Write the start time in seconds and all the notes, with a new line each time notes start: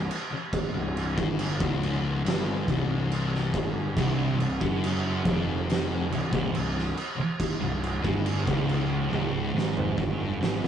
0.11 crash
0.31 muted distorted electric guitar stroke, muted picked electric bass stroke
0.53 kick, crash
0.74 C1 C2
0.97 crash
1.16 G1 G2, kick
1.39 crash
1.60 C#1 C#2, kick
1.83 crash
2.25 G1 G2, snare, crash
2.67 C1 C2, kick, crash
3.11 crash
3.35 snare
3.54 G1 G2, kick, crash
3.97 C1 C2, kick, crash
4.39 C1 C2, crash
4.61 F#1 F#2, kick
4.84 crash
5.25 F1 F2, kick, crash
5.70 snare, crash
6.10 C1 C2, crash
6.31 C1 C2, kick
6.52 C1 C2, crash
6.79 snare
6.97 crash
7.16 muted distorted electric guitar stroke, muted picked electric bass stroke
7.40 kick, crash
7.60 C1 C2
7.83 crash
8.02 G1 G2, kick
8.26 crash
8.45 C#1 C#2, kick
8.69 crash
9.09 C#1 C#2, high tom
9.54 G#1 G#2
9.58 snare
9.77 mid tom
9.97 G1 G2, kick
10.40 G#1 G#2, snare
10.62 C1 C2, snare